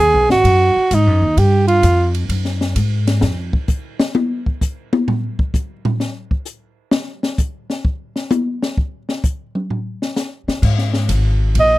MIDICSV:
0, 0, Header, 1, 5, 480
1, 0, Start_track
1, 0, Tempo, 462963
1, 1425, Time_signature, 4, 2, 24, 8
1, 12220, End_track
2, 0, Start_track
2, 0, Title_t, "Alto saxophone"
2, 0, Program_c, 0, 65
2, 0, Note_on_c, 0, 68, 99
2, 285, Note_off_c, 0, 68, 0
2, 325, Note_on_c, 0, 66, 98
2, 977, Note_on_c, 0, 63, 72
2, 993, Note_off_c, 0, 66, 0
2, 1433, Note_on_c, 0, 67, 85
2, 1448, Note_off_c, 0, 63, 0
2, 1729, Note_off_c, 0, 67, 0
2, 1735, Note_on_c, 0, 65, 89
2, 2188, Note_off_c, 0, 65, 0
2, 12024, Note_on_c, 0, 75, 86
2, 12220, Note_off_c, 0, 75, 0
2, 12220, End_track
3, 0, Start_track
3, 0, Title_t, "Upright bass"
3, 0, Program_c, 1, 32
3, 0, Note_on_c, 1, 39, 89
3, 142, Note_off_c, 1, 39, 0
3, 142, Note_on_c, 1, 35, 55
3, 297, Note_off_c, 1, 35, 0
3, 304, Note_on_c, 1, 32, 61
3, 450, Note_off_c, 1, 32, 0
3, 456, Note_on_c, 1, 42, 85
3, 762, Note_off_c, 1, 42, 0
3, 942, Note_on_c, 1, 44, 92
3, 1109, Note_off_c, 1, 44, 0
3, 1109, Note_on_c, 1, 42, 60
3, 1257, Note_off_c, 1, 42, 0
3, 1263, Note_on_c, 1, 39, 73
3, 1413, Note_off_c, 1, 39, 0
3, 1421, Note_on_c, 1, 43, 89
3, 1888, Note_off_c, 1, 43, 0
3, 1899, Note_on_c, 1, 41, 98
3, 2367, Note_off_c, 1, 41, 0
3, 2375, Note_on_c, 1, 42, 82
3, 2845, Note_off_c, 1, 42, 0
3, 2858, Note_on_c, 1, 44, 87
3, 3326, Note_off_c, 1, 44, 0
3, 3338, Note_on_c, 1, 41, 75
3, 3655, Note_off_c, 1, 41, 0
3, 11012, Note_on_c, 1, 44, 83
3, 11483, Note_off_c, 1, 44, 0
3, 11493, Note_on_c, 1, 32, 90
3, 11964, Note_off_c, 1, 32, 0
3, 11980, Note_on_c, 1, 34, 78
3, 12220, Note_off_c, 1, 34, 0
3, 12220, End_track
4, 0, Start_track
4, 0, Title_t, "Muted upright bass strokes"
4, 791, Note_on_c, 9, 29, 41
4, 894, Note_off_c, 9, 29, 0
4, 10863, Note_on_c, 9, 29, 48
4, 10967, Note_off_c, 9, 29, 0
4, 12220, End_track
5, 0, Start_track
5, 0, Title_t, "Drums"
5, 311, Note_on_c, 9, 38, 56
5, 415, Note_off_c, 9, 38, 0
5, 464, Note_on_c, 9, 51, 63
5, 465, Note_on_c, 9, 36, 25
5, 568, Note_off_c, 9, 36, 0
5, 568, Note_off_c, 9, 51, 0
5, 943, Note_on_c, 9, 44, 57
5, 943, Note_on_c, 9, 51, 60
5, 944, Note_on_c, 9, 36, 19
5, 1047, Note_off_c, 9, 36, 0
5, 1047, Note_off_c, 9, 44, 0
5, 1047, Note_off_c, 9, 51, 0
5, 1424, Note_on_c, 9, 36, 17
5, 1426, Note_on_c, 9, 51, 58
5, 1527, Note_off_c, 9, 36, 0
5, 1530, Note_off_c, 9, 51, 0
5, 1745, Note_on_c, 9, 51, 48
5, 1848, Note_off_c, 9, 51, 0
5, 1899, Note_on_c, 9, 44, 67
5, 1899, Note_on_c, 9, 51, 64
5, 1901, Note_on_c, 9, 36, 23
5, 2003, Note_off_c, 9, 44, 0
5, 2003, Note_off_c, 9, 51, 0
5, 2004, Note_off_c, 9, 36, 0
5, 2224, Note_on_c, 9, 51, 47
5, 2328, Note_off_c, 9, 51, 0
5, 2380, Note_on_c, 9, 36, 25
5, 2380, Note_on_c, 9, 51, 64
5, 2483, Note_off_c, 9, 51, 0
5, 2484, Note_off_c, 9, 36, 0
5, 2539, Note_on_c, 9, 38, 28
5, 2643, Note_off_c, 9, 38, 0
5, 2705, Note_on_c, 9, 38, 42
5, 2809, Note_off_c, 9, 38, 0
5, 2859, Note_on_c, 9, 44, 56
5, 2859, Note_on_c, 9, 51, 65
5, 2861, Note_on_c, 9, 36, 24
5, 2963, Note_off_c, 9, 44, 0
5, 2963, Note_off_c, 9, 51, 0
5, 2965, Note_off_c, 9, 36, 0
5, 3187, Note_on_c, 9, 51, 51
5, 3188, Note_on_c, 9, 38, 61
5, 3291, Note_off_c, 9, 51, 0
5, 3292, Note_off_c, 9, 38, 0
5, 3331, Note_on_c, 9, 38, 79
5, 3435, Note_off_c, 9, 38, 0
5, 3663, Note_on_c, 9, 36, 81
5, 3766, Note_off_c, 9, 36, 0
5, 3815, Note_on_c, 9, 44, 58
5, 3819, Note_on_c, 9, 36, 86
5, 3918, Note_off_c, 9, 44, 0
5, 3923, Note_off_c, 9, 36, 0
5, 4142, Note_on_c, 9, 38, 91
5, 4246, Note_off_c, 9, 38, 0
5, 4301, Note_on_c, 9, 48, 94
5, 4405, Note_off_c, 9, 48, 0
5, 4628, Note_on_c, 9, 36, 63
5, 4732, Note_off_c, 9, 36, 0
5, 4784, Note_on_c, 9, 36, 70
5, 4785, Note_on_c, 9, 44, 59
5, 4887, Note_off_c, 9, 36, 0
5, 4889, Note_off_c, 9, 44, 0
5, 5109, Note_on_c, 9, 48, 91
5, 5213, Note_off_c, 9, 48, 0
5, 5265, Note_on_c, 9, 43, 89
5, 5369, Note_off_c, 9, 43, 0
5, 5589, Note_on_c, 9, 36, 78
5, 5693, Note_off_c, 9, 36, 0
5, 5743, Note_on_c, 9, 36, 78
5, 5744, Note_on_c, 9, 44, 53
5, 5846, Note_off_c, 9, 36, 0
5, 5848, Note_off_c, 9, 44, 0
5, 6066, Note_on_c, 9, 43, 86
5, 6169, Note_off_c, 9, 43, 0
5, 6220, Note_on_c, 9, 38, 42
5, 6324, Note_off_c, 9, 38, 0
5, 6542, Note_on_c, 9, 36, 66
5, 6645, Note_off_c, 9, 36, 0
5, 6692, Note_on_c, 9, 44, 53
5, 6795, Note_off_c, 9, 44, 0
5, 7169, Note_on_c, 9, 38, 91
5, 7272, Note_off_c, 9, 38, 0
5, 7498, Note_on_c, 9, 38, 53
5, 7601, Note_off_c, 9, 38, 0
5, 7652, Note_on_c, 9, 44, 56
5, 7655, Note_on_c, 9, 36, 81
5, 7755, Note_off_c, 9, 44, 0
5, 7759, Note_off_c, 9, 36, 0
5, 7980, Note_on_c, 9, 38, 36
5, 8084, Note_off_c, 9, 38, 0
5, 8135, Note_on_c, 9, 36, 82
5, 8239, Note_off_c, 9, 36, 0
5, 8457, Note_on_c, 9, 38, 32
5, 8561, Note_off_c, 9, 38, 0
5, 8612, Note_on_c, 9, 44, 63
5, 8613, Note_on_c, 9, 48, 99
5, 8715, Note_off_c, 9, 44, 0
5, 8716, Note_off_c, 9, 48, 0
5, 8942, Note_on_c, 9, 38, 53
5, 9046, Note_off_c, 9, 38, 0
5, 9098, Note_on_c, 9, 36, 76
5, 9201, Note_off_c, 9, 36, 0
5, 9422, Note_on_c, 9, 38, 39
5, 9525, Note_off_c, 9, 38, 0
5, 9578, Note_on_c, 9, 36, 89
5, 9578, Note_on_c, 9, 44, 62
5, 9682, Note_off_c, 9, 36, 0
5, 9682, Note_off_c, 9, 44, 0
5, 9903, Note_on_c, 9, 47, 39
5, 10006, Note_off_c, 9, 47, 0
5, 10061, Note_on_c, 9, 43, 50
5, 10165, Note_off_c, 9, 43, 0
5, 10389, Note_on_c, 9, 38, 35
5, 10493, Note_off_c, 9, 38, 0
5, 10538, Note_on_c, 9, 44, 60
5, 10539, Note_on_c, 9, 38, 54
5, 10642, Note_off_c, 9, 44, 0
5, 10643, Note_off_c, 9, 38, 0
5, 10869, Note_on_c, 9, 38, 49
5, 10973, Note_off_c, 9, 38, 0
5, 11018, Note_on_c, 9, 36, 60
5, 11020, Note_on_c, 9, 49, 72
5, 11121, Note_off_c, 9, 36, 0
5, 11124, Note_off_c, 9, 49, 0
5, 11180, Note_on_c, 9, 38, 30
5, 11283, Note_off_c, 9, 38, 0
5, 11337, Note_on_c, 9, 38, 47
5, 11441, Note_off_c, 9, 38, 0
5, 11497, Note_on_c, 9, 36, 29
5, 11497, Note_on_c, 9, 44, 61
5, 11497, Note_on_c, 9, 51, 74
5, 11601, Note_off_c, 9, 36, 0
5, 11601, Note_off_c, 9, 44, 0
5, 11601, Note_off_c, 9, 51, 0
5, 11976, Note_on_c, 9, 51, 66
5, 11978, Note_on_c, 9, 36, 21
5, 12079, Note_off_c, 9, 51, 0
5, 12081, Note_off_c, 9, 36, 0
5, 12220, End_track
0, 0, End_of_file